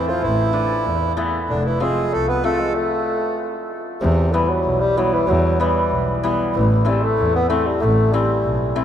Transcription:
Already playing: E3
0.07 F3 F4
0.21 A1 E3 E4
0.53 E3 A3 D4
0.85 E2
1.17 E3 A3 B3
1.48 F1 D3 D4
1.65 E3 E4
1.80 F3 G#3 A3 C4 G#4
2.12 C2 A3 A4
2.28 B3 B4
2.43 F3 A3 C4 A4
2.60 G#3
2.75 A3
4.01 E2 C3
4.32 E3 G3 B3
4.49 F#3
4.64 B1
4.81 G3
4.97 E3 F#3 G3 B3
5.14 E3
5.27 E2 F#3
5.60 E3 G3 B3
5.90 B1
6.23 E3 G3 B3
6.54 A1 E3
6.85 E3 G3 A3 C4
7.03 A3
7.17 E2
7.36 B3
7.49 E3 A3 C4
7.67 G3
7.80 A1 A3
8.13 E3 G3 A3 C4
8.43 B1
8.75 E3 A3 C4

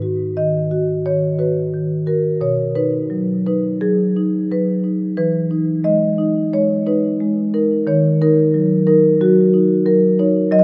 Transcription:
Already playing: G#2 B4
0.02 F#4
0.37 D#3 D#5
0.71 F#4
1.06 D#3 C#5
1.39 F#4 B4
1.74 D#3
2.07 F#4 A#4
2.41 B2 C#5
2.75 D#4 B4
3.10 F#3
3.46 D#4 B4
3.81 F#3 G#4
4.17 D#4
4.51 F#3 B4
4.84 D#4
5.17 E3 B4
5.51 D#4
5.84 G#3 D#5
6.18 D#4
6.53 G#3 C#5
6.86 D#4 B4
7.20 G#3
7.54 D#4 A#4
7.87 D#3 C#5
8.22 D#4 A#4
8.54 F#3
8.87 D#4 A#4
9.21 F#3 F#4
9.54 D#4
9.86 F#3 A#4
10.19 D#4 C#5
10.52 F#3 D#5
10.59 D#5

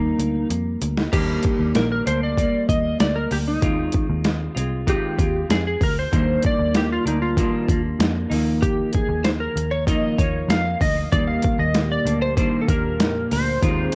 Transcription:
Already playing: D#2 D#3 G3 A#3 D#4
0.19 D2, closed hi-hat
0.50 F2, closed hi-hat
0.82 D2, closed hi-hat
0.97 snare
1.12 D#2 D#3 G3 A#3 D4 G4, kick, closed hi-hat, crash
1.43 kick, closed hi-hat
1.59 D#2
1.75 A#1 A#4, snare, closed hi-hat
1.92 A#4
2.06 D2 G3 A#3 D4 C5, closed hi-hat
2.23 D5
2.37 G3 A#3, kick, closed hi-hat
2.69 D#2 D#5, kick, closed hi-hat
3.00 D2 D5, snare, closed hi-hat
3.16 A#4
3.31 D2 G4, open hi-hat
3.48 D#4
3.61 D#2 D#3 G#3 C4 F4, kick, closed hi-hat
3.92 kick, closed hi-hat
4.10 D#2
4.25 snare, closed hi-hat
4.55 C2 G#3 C4 F4, closed hi-hat
4.87 D#3 G#3 C4 F4 G4, kick, closed hi-hat
5.17 D#2 G#3 C4 F4, kick, closed hi-hat
5.49 F2 G#4, snare, closed hi-hat
5.67 G#4
5.81 D2 A#4, kick, open hi-hat
5.99 C5
6.12 D#2 D#3 G3 A#3 D4, kick, closed hi-hat
6.42 D5, kick, closed hi-hat
6.59 D#2
6.74 G4, snare, closed hi-hat
6.92 F4
7.05 D2 G3 A#3 D4 D#4, closed hi-hat
7.22 F4
7.37 D#3 G3 A#3 D4, kick, closed hi-hat
7.68 D#2 G3 A#3 D4, kick, closed hi-hat
7.99 F2, snare, closed hi-hat
8.30 D#2 F3 A#3 D#4, open hi-hat
8.34 D#3
8.62 G4, kick, closed hi-hat
8.93 G#4, kick, closed hi-hat
9.09 D#2
9.24 C5, snare, closed hi-hat
9.40 A#4
9.56 D#2, closed hi-hat
9.71 C#5
9.87 D#3 F3 A#3 D#4 D#5, kick, closed hi-hat
10.18 D#2 F3 A#3 D#4 C#5, kick, closed hi-hat
10.48 F2 F5, snare, closed hi-hat
10.81 D2 D#5, kick, open hi-hat
11.12 D#2 A#2 D#3 G3 A#3 G4 D5, kick, closed hi-hat
11.27 F5
11.42 kick, closed hi-hat
11.59 D#2 D#5
11.74 snare, closed hi-hat
11.92 D5
12.05 D2 G3 A#3 D4, closed hi-hat
12.22 C5
12.37 D#3 G3 A#3 D4 C5, kick, closed hi-hat
12.62 A4
12.68 D#2 G3 A#3 D4 A#4, kick, closed hi-hat
13.00 F2, snare, closed hi-hat
13.31 D2 C5, open hi-hat
13.62 D#2 D#3 G#3 C4 F4 G4 G#4, kick, closed hi-hat

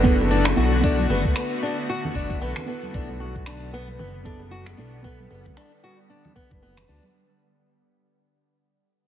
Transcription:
Already playing: F#1 D3 A3 B3 E4 F#4 A4
0.03 B3 E4 A4, kick, high bongo
0.21 high bongo
0.31 D4
0.45 finger snap, high bongo
0.56 B1 B3 E4 F#4 A4
0.81 B3 D4 E4, kick
0.85 A4
0.99 high conga
1.09 F#1 B3, high bongo
1.25 D2, kick
1.36 B3, finger snap
1.63 D4, high bongo
1.89 F#4
2.04 low conga
2.15 F#1 D4, kick
2.30 kick
2.41 B1 B3
2.56 finger snap, high bongo, low conga
2.66 B3 E4 A4
2.83 high conga
2.91 B1 G3 B3 D4 E4, kick
2.95 A4
3.09 high conga
3.20 F#4, high bongo
3.36 kick
3.46 D4, finger snap
3.73 B3, high bongo
3.88 high conga
3.99 F#1 B3, low conga
4.24 B3 D4 E4 A4, kick, high bongo
4.40 high bongo
4.51 F#4
4.66 finger snap, high bongo
4.77 B1 B3 D4 E4 A4
5.02 B3 E4, kick
5.07 A4
5.20 high conga
5.30 F#1 B3, high bongo
5.45 D2, kick, low conga
5.57 D4, finger snap
5.83 F#4, high bongo
6.10 D4
6.24 high conga, low conga
6.36 B3, kick
6.51 F#1, kick, high conga
6.62 B3
6.77 finger snap, high bongo, low conga
6.88 D2 D4, high bongo
7.03 high conga

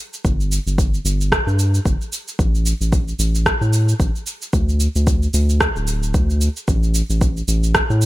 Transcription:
0.14 cabasa
0.25 G1, kick, cabasa
0.40 cabasa
0.52 cabasa
0.66 G1, cabasa
0.78 kick, cabasa
0.94 cabasa
1.05 G1, cabasa
1.21 cabasa
1.32 kick, cross-stick, cabasa
1.47 G2, cabasa
1.59 cabasa
1.74 cabasa
1.85 G1, kick, cabasa
2.01 cabasa
2.13 cabasa
2.28 cabasa
2.39 A1, kick, cabasa
2.55 cabasa
2.66 cabasa
2.81 A1, cabasa
2.92 kick, cabasa
3.08 cabasa
3.19 A1, cabasa
3.35 cabasa
3.46 kick, cross-stick, cabasa
3.61 A2, cabasa
3.73 cabasa
3.89 cabasa
3.99 A1, kick, cabasa
4.16 cabasa
4.27 cabasa
4.42 cabasa
4.53 D2, kick, cabasa
4.69 cabasa
4.80 cabasa
4.96 D2, cabasa
5.07 kick, cabasa
5.23 cabasa
5.34 D2, cabasa
5.50 cabasa
5.61 kick, cross-stick, cabasa
5.76 D1, cabasa
5.88 cabasa
6.03 cabasa
6.14 D2, kick, cabasa
6.30 cabasa
6.41 cabasa
6.57 cabasa
6.68 A1, kick, cabasa
6.83 cabasa
6.95 cabasa
7.10 A1, cabasa
7.21 kick, cabasa
7.37 cabasa
7.48 A1, cabasa
7.64 cabasa
7.75 kick, cross-stick, cabasa
7.90 A2, cabasa
8.02 cabasa

